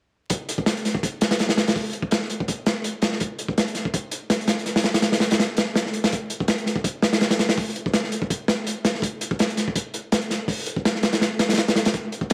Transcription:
0.30 kick loud
0.30 closed hi-hat medium
0.49 closed hi-hat medium
0.58 kick medium
0.66 snare loud
0.66 closed hi-hat medium
0.77 closed hi-hat soft
0.85 snare soft
0.85 closed hi-hat medium
0.95 kick loud
1.03 kick loud
1.03 closed hi-hat medium
1.21 snare medium
1.21 closed hi-hat medium
1.31 snare loud
1.31 closed hi-hat medium
1.39 snare medium
1.39 closed hi-hat medium
1.49 snare loud
1.49 closed hi-hat medium
1.57 snare loud
1.57 closed hi-hat medium
1.67 snare loud
1.67 closed hi-hat medium
1.76 kick loud
1.76 open hi-hat medium
1.93 closed hi-hat medium
2.02 kick medium
2.11 snare loud
2.11 closed hi-hat medium
2.22 snare soft
2.30 closed hi-hat medium
2.40 kick loud
2.48 kick medium
2.48 closed hi-hat medium
2.66 snare loud
2.66 closed hi-hat medium
2.84 closed hi-hat medium
3.02 snare loud
3.02 closed hi-hat medium
3.12 snare soft
3.20 kick loud
3.20 closed hi-hat medium
3.39 closed hi-hat medium
3.48 kick medium
3.58 snare loud
3.58 closed hi-hat medium
3.68 closed hi-hat soft
3.75 snare soft
3.75 closed hi-hat medium
3.85 kick medium
3.94 kick medium
3.94 closed hi-hat medium
4.11 closed hi-hat medium
4.30 snare loud
4.30 closed hi-hat medium
4.41 closed hi-hat soft
4.48 snare loud
4.48 closed hi-hat medium
4.59 closed hi-hat soft
4.66 snare soft
4.66 closed hi-hat medium
4.76 snare loud
4.76 closed hi-hat medium
4.83 snare loud
4.83 closed hi-hat medium
4.94 snare loud
4.94 closed hi-hat medium
5.02 snare loud
5.02 closed hi-hat medium
5.12 snare medium
5.12 closed hi-hat medium
5.20 snare loud
5.20 closed hi-hat medium
5.31 snare loud
5.31 closed hi-hat medium
5.39 snare loud
5.39 closed hi-hat medium
5.57 snare loud
5.57 closed hi-hat medium
5.75 snare loud
5.75 closed hi-hat medium
5.86 snare soft
5.94 closed hi-hat medium
6.04 snare loud
6.04 closed hi-hat medium
6.12 kick loud
6.12 closed hi-hat medium
6.30 closed hi-hat medium
6.40 kick medium
6.48 snare loud
6.48 closed hi-hat medium
6.58 closed hi-hat soft
6.66 snare soft
6.66 closed hi-hat medium
6.76 kick medium
6.84 kick loud
6.84 closed hi-hat medium
7.02 snare loud
7.02 closed hi-hat medium
7.13 snare loud
7.13 closed hi-hat medium
7.21 snare medium
7.21 closed hi-hat medium
7.30 snare loud
7.30 closed hi-hat medium
7.39 snare loud
7.39 closed hi-hat medium
7.49 snare loud
7.49 closed hi-hat medium
7.57 kick loud
7.57 open hi-hat medium
7.76 closed hi-hat medium
7.86 kick medium
7.94 snare loud
7.94 closed hi-hat medium
8.04 snare soft
8.12 closed hi-hat medium
8.22 kick loud
8.30 kick loud
8.30 closed hi-hat medium
8.48 snare loud
8.48 closed hi-hat medium
8.67 closed hi-hat medium
8.85 snare loud
8.85 closed hi-hat medium
8.95 snare soft
9.02 kick loud
9.02 closed hi-hat medium
9.21 closed hi-hat medium
9.31 kick medium
9.39 snare loud
9.39 closed hi-hat medium
9.50 closed hi-hat soft
9.57 snare soft
9.57 closed hi-hat medium
9.68 kick medium
9.76 kick loud
9.76 closed hi-hat medium
9.94 closed hi-hat medium
10.12 snare loud
10.12 closed hi-hat medium
10.21 closed hi-hat soft
10.30 snare medium
10.30 closed hi-hat medium
10.48 kick loud
10.48 open hi-hat medium
10.66 closed hi-hat medium
10.76 kick medium
10.85 snare loud
10.85 closed hi-hat medium
10.95 snare soft
11.03 snare loud
11.03 closed hi-hat medium
11.13 snare loud
11.13 closed hi-hat medium
11.21 snare medium
11.21 closed hi-hat medium
11.39 snare loud
11.39 closed hi-hat medium
11.49 snare medium
11.49 closed hi-hat medium
11.53 snare medium
11.53 closed hi-hat medium
11.57 snare loud
11.57 closed hi-hat medium
11.68 snare loud
11.68 closed hi-hat medium
11.76 snare loud
11.76 closed hi-hat medium
11.85 snare loud
11.85 closed hi-hat medium
11.94 kick loud
11.94 closed hi-hat medium
12.12 closed hi-hat medium
12.21 kick medium
12.30 closed hi-hat medium

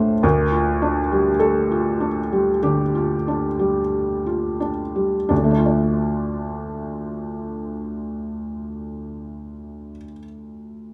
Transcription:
0.00 0.26 A2 soft
0.00 0.25 A3 soft
0.00 0.26 D4 soft
0.00 0.26 F4 soft
0.00 0.26 A4 medium
0.00 0.19 C5 medium
0.23 2.59 D2 soft
0.23 1.36 A#4 soft
0.52 0.98 F4 soft
0.82 1.29 D4 soft
1.12 2.08 G3 soft
1.39 2.59 A4 soft
1.71 2.20 F4 soft
2.00 2.50 D4 soft
2.32 2.82 G3 soft
2.63 3.14 D3 soft
2.63 4.57 G4 soft
2.95 3.46 F4 soft
3.28 3.80 D4 soft
3.59 4.68 G3 soft
4.26 4.82 F4 soft
4.60 5.16 D4 soft
4.96 5.30 G3 soft
5.29 9.89 D2 soft
5.29 5.49 D4 soft
5.37 9.96 D3 soft
5.44 10.03 A3 soft
5.51 10.10 D4 soft
5.58 10.17 F4 soft
5.65 10.25 D5 soft

